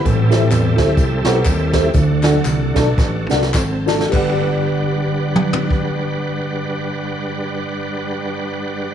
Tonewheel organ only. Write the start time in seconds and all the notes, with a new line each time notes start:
0.05 G3 A3 C4 E4 A4
1.94 A3 D4 F#4
3.31 D4 B4
3.56 C4 A4
3.88 A3 F#4
4.14 G3 D4 B4 F#5